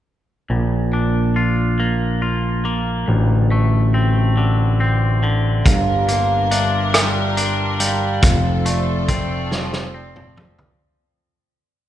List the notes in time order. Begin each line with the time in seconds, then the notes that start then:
0.50 A#1 A#2
0.93 D4
1.36 F4
1.80 A#3
2.22 F4
2.65 A#3
3.08 A1 D2
3.51 A3
3.94 C4
4.37 D3
4.80 C4
5.23 D3
5.65 G1 G2 G3 D4 F4 A#4 F5, kick, closed hi-hat
6.08 A#3, closed hi-hat
6.50 D4 E5, closed hi-hat
6.94 G3, cross-stick, closed hi-hat
7.37 D4, closed hi-hat
7.80 G3 F5, closed hi-hat
8.22 F1 F2 F3 C4 F4 A4, kick, closed hi-hat
8.66 A3 D5, closed hi-hat
9.08 C4, kick, closed hi-hat
9.51 F3 C5, snare
9.73 snare
9.94 C4
10.16 mid tom
10.37 F3, mid tom
10.59 floor tom